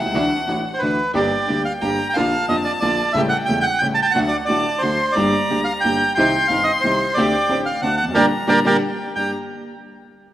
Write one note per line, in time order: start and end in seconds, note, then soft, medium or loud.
0.00 0.05 B1 medium
0.00 0.83 F#5 medium
0.06 0.10 C2 medium
0.10 0.14 C#2 medium
0.10 0.28 A3 medium
0.10 0.28 D4 medium
0.14 0.28 D2 medium
0.14 0.28 D3 medium
0.14 0.28 E3 medium
0.14 0.28 D4 medium
0.14 0.28 E4 medium
0.14 0.28 F#4 medium
0.47 0.62 A1 medium
0.47 0.62 A2 medium
0.47 0.62 E3 soft
0.47 0.62 A3 soft
0.47 0.61 D4 medium
0.47 0.62 D4 soft
0.47 0.61 E4 soft
0.47 0.61 F#4 medium
0.47 0.62 F#4 medium
0.74 0.81 C5 medium
0.79 0.96 D2 medium
0.79 0.96 D3 medium
0.79 0.96 E3 medium
0.79 0.96 A3 soft
0.79 0.96 D4 medium
0.79 0.96 D4 soft
0.79 0.96 E4 soft
0.79 0.96 F#4 medium
0.79 1.12 B4 medium
1.14 1.29 G1 medium
1.14 1.29 G2 medium
1.14 1.29 D3 medium
1.14 1.29 G3 medium
1.14 1.29 A#3 medium
1.14 1.29 D4 medium
1.14 1.29 G4 medium
1.14 1.62 D5 medium
1.14 1.83 G5 medium
1.48 1.63 D2 medium
1.48 1.63 D3 medium
1.48 1.63 G3 soft
1.48 1.63 A#3 medium
1.48 1.63 A#3 soft
1.48 1.63 D4 soft
1.48 1.63 G4 medium
1.48 1.64 G4 medium
1.65 1.73 F5 medium
1.81 1.96 G1 medium
1.81 1.97 G2 medium
1.81 1.96 D3 medium
1.81 1.97 G3 medium
1.81 1.96 A#3 medium
1.81 1.97 A#3 medium
1.81 1.96 D4 soft
1.81 1.97 G4 medium
1.81 2.08 G5 loud
1.81 2.16 A#5 loud
2.09 2.16 G5 medium
2.14 2.31 A#1 medium
2.14 2.31 A#2 medium
2.14 2.30 D3 medium
2.14 2.30 F3 medium
2.14 2.30 A#3 medium
2.14 2.30 D4 medium
2.14 2.30 F4 medium
2.14 2.31 F4 medium
2.14 2.46 F5 loud
2.14 3.19 A5 loud
2.48 2.63 F1 medium
2.48 2.63 F2 medium
2.48 2.63 D3 soft
2.48 2.63 F3 soft
2.48 2.63 A#3 soft
2.48 2.63 A#3 medium
2.48 2.63 D4 medium
2.48 2.63 F4 medium
2.48 2.56 D#5 medium
2.64 2.72 D5 medium
2.80 2.97 A#1 medium
2.80 2.97 A#2 medium
2.80 2.96 D3 medium
2.80 2.96 F3 soft
2.80 2.97 A#3 medium
2.80 2.97 D4 soft
2.80 2.97 F4 medium
2.80 3.12 D5 medium
3.13 3.29 A1 medium
3.13 3.29 A2 loud
3.13 3.29 C#3 medium
3.13 3.29 G3 medium
3.13 3.29 A3 medium
3.13 3.30 A3 medium
3.13 3.30 C#4 medium
3.13 3.30 E4 medium
3.13 3.30 G4 medium
3.13 3.21 E5 loud
3.17 4.15 G5 loud
3.29 3.37 F#5 loud
3.46 3.63 E1 medium
3.46 3.63 E2 medium
3.46 3.62 C#3 medium
3.46 3.63 G3 soft
3.46 3.63 A3 medium
3.46 3.63 A3 soft
3.46 3.63 C#4 medium
3.46 3.63 G4 medium
3.46 3.59 G5 loud
3.50 3.63 E4 medium
3.61 3.79 F#5 loud
3.61 3.65 G5 medium
3.79 3.96 A1 medium
3.79 3.96 A2 medium
3.79 3.96 C#3 medium
3.79 3.96 G3 soft
3.79 3.96 A3 medium
3.79 3.96 A3 soft
3.79 3.96 C#4 soft
3.79 3.96 E4 medium
3.79 3.87 G5 loud
3.83 3.96 G4 medium
3.94 4.00 A5 loud
4.02 4.06 G5 medium
4.02 4.12 A5 loud
4.11 4.28 A3 medium
4.11 4.29 D4 medium
4.11 4.29 F#4 medium
4.11 4.19 F#5 loud
4.15 4.30 D2 medium
4.15 4.29 D3 loud
4.15 4.30 F#3 medium
4.15 4.29 A3 medium
4.15 4.30 F#4 medium
4.15 4.46 F#5 loud
4.28 4.37 D5 medium
4.46 4.63 A1 medium
4.46 4.63 D3 soft
4.46 4.63 F#3 soft
4.46 4.62 A3 medium
4.46 4.63 A3 soft
4.46 4.62 D4 soft
4.46 4.62 F#4 medium
4.46 4.82 D5 loud
4.50 4.63 A2 medium
4.50 4.63 F#4 medium
4.50 4.84 A5 loud
4.78 4.96 D3 medium
4.78 4.96 D4 soft
4.78 4.96 F#4 medium
4.78 5.15 C5 medium
4.82 4.97 D2 medium
4.82 4.97 F#3 soft
4.82 4.96 A3 soft
4.82 4.97 A3 soft
4.82 4.97 F#4 medium
4.82 5.16 C6 loud
5.12 5.30 A#3 medium
5.12 5.30 D4 medium
5.12 5.30 G4 medium
5.12 5.61 D5 loud
5.17 5.31 G1 medium
5.17 5.31 G2 medium
5.17 5.30 D3 medium
5.17 5.30 G3 medium
5.17 5.31 A#3 medium
5.17 5.31 G4 medium
5.17 6.13 A#5 loud
5.50 5.64 D2 medium
5.50 5.64 D3 medium
5.50 5.64 G3 soft
5.50 5.64 A#3 medium
5.50 5.64 A#3 soft
5.50 5.64 D4 soft
5.50 5.64 G4 medium
5.64 5.72 F5 loud
5.81 5.98 G1 medium
5.81 5.98 G3 soft
5.81 5.98 A#3 soft
5.81 5.98 D4 medium
5.81 5.98 G4 medium
5.81 6.13 G5 loud
5.85 5.98 G2 medium
5.85 5.98 D3 soft
5.85 5.98 A#3 soft
5.85 5.98 G4 medium
6.15 6.31 C2 medium
6.15 6.31 C3 medium
6.15 6.31 D#3 medium
6.15 6.31 G3 medium
6.15 6.31 C4 medium
6.15 6.31 D#4 medium
6.15 6.31 G4 medium
6.15 6.32 G4 medium
6.15 6.47 G5 loud
6.15 7.20 C6 loud
6.48 6.64 G1 medium
6.48 6.64 G2 medium
6.48 6.64 D#3 soft
6.48 6.64 G3 soft
6.48 6.64 C4 soft
6.48 6.65 C4 medium
6.48 6.65 D#4 medium
6.48 6.64 G4 medium
6.48 6.65 G4 medium
6.48 6.64 F5 loud
6.64 6.72 D#5 loud
6.81 6.98 C2 medium
6.81 6.97 C3 medium
6.81 6.97 D#3 medium
6.81 6.98 G3 medium
6.81 6.98 C4 medium
6.81 6.98 D#4 soft
6.81 6.98 G4 medium
6.81 7.16 C5 medium
6.85 6.98 C4 medium
6.85 6.98 G4 medium
7.14 7.31 D2 medium
7.14 7.31 D3 medium
7.14 7.31 A3 medium
7.14 7.30 C4 medium
7.14 7.31 C4 medium
7.14 7.31 D4 medium
7.14 7.31 G4 loud
7.14 7.31 G4 medium
7.14 7.61 D5 loud
7.19 7.83 G5 loud
7.49 7.63 A1 medium
7.49 7.63 A2 medium
7.49 7.63 D3 medium
7.49 7.63 A3 medium
7.49 7.63 C4 medium
7.49 7.63 C4 soft
7.49 7.63 D4 medium
7.49 7.63 G4 medium
7.66 7.81 F5 medium
7.82 7.96 D2 medium
7.82 7.96 D3 medium
7.82 7.96 A3 soft
7.82 7.96 C4 medium
7.82 7.96 C4 soft
7.82 7.96 D4 soft
7.82 7.96 F#4 medium
7.82 7.96 F#5 medium
7.82 8.18 A5 medium
7.97 8.05 F#5 medium
8.03 8.07 E2 medium
8.08 8.12 F2 medium
8.08 8.15 F#2 medium
8.15 8.26 A#2 loud
8.15 8.26 D3 loud
8.15 8.26 G3 loud
8.15 8.26 A#3 loud
8.15 8.26 D4 loud
8.15 8.26 G4 loud
8.15 8.26 A#4 medium
8.15 8.26 D5 medium
8.15 8.26 G5 medium
8.15 8.75 A#5 loud
8.47 8.59 A#2 medium
8.47 8.59 D3 medium
8.47 8.59 G3 medium
8.47 8.59 A#3 loud
8.47 8.59 D4 loud
8.47 8.59 G4 medium
8.47 8.60 A#4 loud
8.47 8.59 D5 loud
8.47 8.60 G5 medium
8.64 8.76 A#2 medium
8.64 8.76 D3 medium
8.64 8.76 G3 loud
8.64 8.76 A#3 loud
8.64 8.76 D4 loud
8.64 8.76 G4 medium
8.64 8.77 A#4 medium
8.64 8.77 D5 medium
8.64 8.77 G5 medium
8.76 8.85 F#5 soft
8.83 9.17 G5 medium
9.16 9.30 G2 medium
9.16 9.30 A#3 medium
9.16 9.30 D4 medium
9.16 9.30 D4 soft
9.16 9.30 G4 medium
9.16 9.31 G5 medium
9.16 9.32 A#5 medium